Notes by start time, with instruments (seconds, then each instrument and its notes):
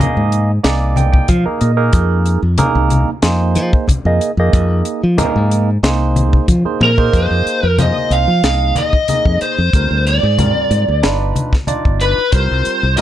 0.00 tine electric piano A#3 D#4 G#4 D#5, closed hi-hat, high conga, low conga
0.17 fingered electric bass G#2
0.32 closed hi-hat
0.63 fingered electric bass C2, tine electric piano A#3 D#4 G#4 D5, snare, closed hi-hat, muted conga
0.96 tine electric piano G5, closed hi-hat, muted conga, high conga
1.12 tine electric piano G5, kick
1.28 fingered electric bass F3, tine electric piano F5, kick, closed hi-hat, high conga
1.46 tine electric piano A#3 D#4 G#4 A#4, muted fingered electric bass stroke
1.61 fingered electric bass A#2, tine electric piano D#5, closed hi-hat
1.77 tine electric piano A#3 D#4 G#4 A#4
1.93 fingered electric bass F2, kick, closed hi-hat, muted conga
2.26 closed hi-hat
2.43 fingered electric bass F2
2.58 tine electric piano A#3 D#4 G#4 A#4, closed hi-hat, high conga
2.75 fingered electric bass C2
2.90 closed hi-hat, muted conga, high conga
3.08 muted fingered electric bass stroke
3.22 fingered electric bass F2, tine electric piano A#3 D#4 G#4 C5, snare, closed hi-hat, muted conga
3.55 fingered electric bass F3, closed hi-hat, muted conga
3.73 kick
3.88 muted fingered electric bass stroke, kick, closed hi-hat, high conga
4.05 fingered electric bass F2, tine electric piano A#3 D#4 G#4 D#5
4.21 closed hi-hat
4.37 fingered electric bass F2, tine electric piano A#3 D#4 G#4 D#5
4.53 fingered electric bass F2, kick, closed hi-hat, muted conga
4.85 closed hi-hat
5.03 fingered electric bass F3
5.18 tine electric piano A#3 D#4 G#4 A#4, closed hi-hat, high conga, low conga
5.36 fingered electric bass G#2
5.51 closed hi-hat, muted conga
5.83 fingered electric bass C2, tine electric piano A#3 D#4 G#4 C5, snare, closed hi-hat
6.16 closed hi-hat, muted conga, high conga
6.33 kick
6.48 fingered electric bass F3, kick, closed hi-hat, high conga
6.65 tine electric piano A#3 D#4 G#4 C5, muted fingered electric bass stroke
6.81 fingered electric bass A#2, lead electric guitar A#4, high tom
6.97 tine electric piano A#3 D#4 G#4 C5, kick
7.12 fingered electric bass F2, tine electric piano A#3 D#4 G#4 C5, kick, closed hi-hat, muted conga
7.17 lead electric guitar C5
7.31 fingered electric bass F2
7.46 muted fingered electric bass stroke, closed hi-hat
7.63 fingered electric bass F2, lead electric guitar A#4
7.78 tine electric piano A#3 D#4 G#4 C5, lead electric guitar D#5, closed hi-hat, muted conga, high conga
8.10 fingered electric bass C2, lead electric guitar F5, closed hi-hat
8.28 fingered electric bass F3
8.43 fingered electric bass C2, tine electric piano A#3 D#4 G#4 D#5, snare, closed hi-hat, muted conga
8.75 lead electric guitar D#5, closed hi-hat, muted conga, high conga
8.93 kick
9.08 tine electric piano A#3 D#4 G#4 D#5, closed hi-hat, high conga
9.25 fingered electric bass F2, kick
9.41 lead electric guitar C5, muted fingered electric bass stroke, closed hi-hat
9.58 fingered electric bass F2
9.73 fingered electric bass D2, tine electric piano G3 C4 F4 A#4, kick, closed hi-hat
9.91 fingered electric bass D2
10.07 lead electric guitar D5, closed hi-hat
10.23 fingered electric bass G#2
10.38 tine electric piano G3 C4 F4 A#4, closed hi-hat, muted conga, high conga, low conga
10.71 fingered electric bass G#2, closed hi-hat
10.88 fingered electric bass D2
11.03 fingered electric bass G1, tine electric piano D4 D#4 F4 B4, snare, closed hi-hat, muted conga
11.36 closed hi-hat, muted conga, high conga
11.53 kick, snare
11.67 tine electric piano D4 D#4 F4 D5, closed hi-hat, high conga
11.85 fingered electric bass G1, kick
12.01 lead electric guitar B4, closed hi-hat
12.18 muted fingered electric bass stroke
12.32 fingered electric bass C2, tine electric piano G3 C4 F4 A#4, lead electric guitar C5, kick, closed hi-hat, muted conga
12.51 fingered electric bass C2
12.65 muted fingered electric bass stroke, closed hi-hat
12.83 fingered electric bass C2
12.97 tine electric piano G3 C4 F4, lead electric guitar D#5, closed hi-hat